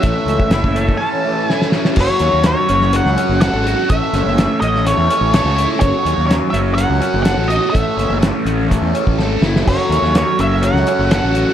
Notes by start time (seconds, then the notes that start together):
Already playing: C#4 A4 C#5
0.00 A1 E3 A3 A4 E5, kick, closed hi-hat
0.25 C#2, closed hi-hat
0.40 kick
0.50 F#1 E4, snare, closed hi-hat
0.64 kick
0.76 A4, closed hi-hat
0.89 kick
0.97 C#4 A5
1.25 A3
1.45 G#5
1.50 E4, snare
1.62 snare
1.72 C#4, snare
1.85 snare
1.95 F#1 F#3, kick, crash
2.01 C#5
2.09 snare
2.19 D#2 C#4, closed hi-hat
2.33 D#2
2.44 F#3 C#5, snare, closed hi-hat
2.69 F#1 C#4, closed hi-hat
2.82 snare
2.92 F#3 F#5, closed hi-hat
3.05 C#2, snare
3.17 C#4, closed hi-hat
3.29 F#1
3.41 A4 F#5, snare, closed hi-hat
3.53 G#1
3.66 F#4, closed hi-hat
3.89 A1 A3 E5, kick, closed hi-hat
4.13 F#1 C#4, snare, closed hi-hat
4.26 F#1
4.37 A3, snare, closed hi-hat
4.61 A1 C#4 D#5, closed hi-hat
4.76 snare
4.86 A3 C#5, closed hi-hat
4.97 E2
5.10 C#4, closed hi-hat
5.21 A1
5.33 A4 C#5, snare, closed hi-hat
5.44 C#2
5.56 E4, closed hi-hat
5.80 F#1 F#3 C#5, kick, closed hi-hat
6.05 D#2 C#4, closed hi-hat
6.18 D#2
6.27 F#3 C#5
6.31 snare, closed hi-hat
6.50 F#1 C#4 E5, closed hi-hat
6.75 F#3 F#5, closed hi-hat
6.90 C#2
7.01 C#4, closed hi-hat
7.14 F#1
7.23 A4 F#5, snare, closed hi-hat
7.37 A1
7.48 F#4 D#5, closed hi-hat
7.70 A3 E5
7.75 A1, kick, closed hi-hat
7.97 F#1 C#4, closed hi-hat
8.09 F#1
8.21 A3, snare, closed hi-hat
8.44 A1 C#4, closed hi-hat
8.69 A3, kick, closed hi-hat
8.81 E2
8.94 C#4, closed hi-hat
9.07 A1, kick
9.18 G#1 A4, snare
9.41 F#1 E4, snare
9.56 snare
9.65 F#1 F#3 C#4 A4 C#5, kick, crash
9.89 D#2 C#4, snare, closed hi-hat
10.02 D#2, snare
10.15 F#3 C#5, snare, closed hi-hat
10.39 F#1 C#4 E5, closed hi-hat
10.62 F#3 F#5, closed hi-hat
10.73 C#2, snare
10.87 C#4, closed hi-hat
10.99 F#1
11.11 A4 F#5, snare, closed hi-hat
11.24 A1
11.34 F#4, closed hi-hat